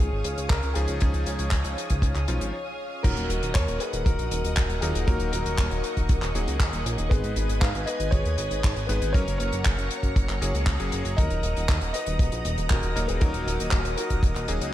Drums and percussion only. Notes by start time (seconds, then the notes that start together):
0.24 closed hi-hat
0.38 closed hi-hat
0.50 kick, clap, closed hi-hat
0.63 closed hi-hat
0.75 closed hi-hat
0.88 closed hi-hat
1.00 kick, closed hi-hat
1.14 closed hi-hat
1.26 closed hi-hat
1.39 closed hi-hat
1.51 kick, clap, closed hi-hat
1.64 closed hi-hat
1.78 closed hi-hat
1.90 kick, closed hi-hat
2.02 kick, closed hi-hat
2.15 clap, closed hi-hat
2.28 closed hi-hat
2.41 closed hi-hat
3.04 kick, closed hi-hat, crash
3.17 closed hi-hat
3.30 closed hi-hat
3.43 closed hi-hat
3.55 kick, clap, closed hi-hat
3.68 closed hi-hat
3.80 closed hi-hat
3.93 closed hi-hat
4.06 kick, closed hi-hat
4.19 closed hi-hat
4.31 closed hi-hat
4.45 closed hi-hat
4.57 kick, clap, closed hi-hat
4.70 closed hi-hat
4.82 closed hi-hat
4.95 closed hi-hat
5.08 kick, closed hi-hat
5.20 closed hi-hat
5.33 closed hi-hat
5.46 closed hi-hat
5.58 kick, clap, closed hi-hat
5.71 closed hi-hat
5.84 closed hi-hat
5.97 kick, closed hi-hat
6.09 kick, closed hi-hat
6.22 clap, closed hi-hat
6.35 closed hi-hat
6.48 closed hi-hat
6.60 kick, clap, closed hi-hat
6.73 closed hi-hat
6.86 closed hi-hat
6.98 closed hi-hat
7.11 kick, closed hi-hat
7.24 closed hi-hat
7.36 closed hi-hat
7.49 closed hi-hat
7.62 kick, clap, closed hi-hat
7.75 closed hi-hat
7.87 closed hi-hat
8.00 closed hi-hat
8.12 kick, closed hi-hat
8.25 closed hi-hat
8.38 closed hi-hat
8.51 closed hi-hat
8.64 kick, clap, closed hi-hat
8.76 closed hi-hat
8.89 closed hi-hat
9.02 closed hi-hat
9.14 kick, closed hi-hat
9.28 closed hi-hat
9.40 closed hi-hat
9.53 closed hi-hat
9.65 kick, clap, closed hi-hat
9.78 closed hi-hat
9.91 closed hi-hat
10.03 kick, closed hi-hat
10.16 kick, closed hi-hat
10.29 clap, closed hi-hat
10.42 closed hi-hat
10.55 closed hi-hat
10.66 kick, clap, closed hi-hat
10.80 closed hi-hat
10.92 closed hi-hat
11.05 closed hi-hat
11.18 kick, closed hi-hat
11.30 closed hi-hat
11.43 closed hi-hat
11.57 closed hi-hat
11.69 kick, clap, closed hi-hat
11.81 closed hi-hat
11.94 closed hi-hat
12.06 closed hi-hat
12.19 kick, closed hi-hat
12.32 closed hi-hat
12.45 closed hi-hat
12.58 closed hi-hat
12.70 kick, clap, closed hi-hat
12.83 closed hi-hat
12.97 closed hi-hat
13.09 closed hi-hat
13.21 kick, closed hi-hat
13.34 closed hi-hat
13.48 closed hi-hat
13.60 closed hi-hat
13.71 kick, clap, closed hi-hat
13.85 closed hi-hat
13.98 closed hi-hat
14.10 kick, closed hi-hat
14.23 kick, closed hi-hat
14.35 clap, closed hi-hat
14.48 closed hi-hat
14.61 closed hi-hat